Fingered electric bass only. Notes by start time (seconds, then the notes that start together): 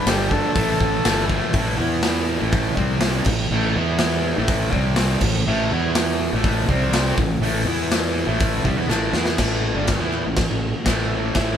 0.06 G1
0.56 A1
0.80 A1
1.06 G1
1.54 A1
1.79 E2
2.42 A1
2.77 C2
3.25 A1
3.51 A1
3.76 E2
4.38 A1
4.72 C2
5.21 A1
5.47 A1
5.72 E2
6.33 A1
6.68 C2
7.17 A1
7.40 A1
7.65 E2
8.27 A1
8.64 C2
8.76 E2
8.89 A1
9.13 E2
9.38 A1
9.75 G1
10.00 E2
10.26 A1
10.51 A1
10.86 A1
11.35 A1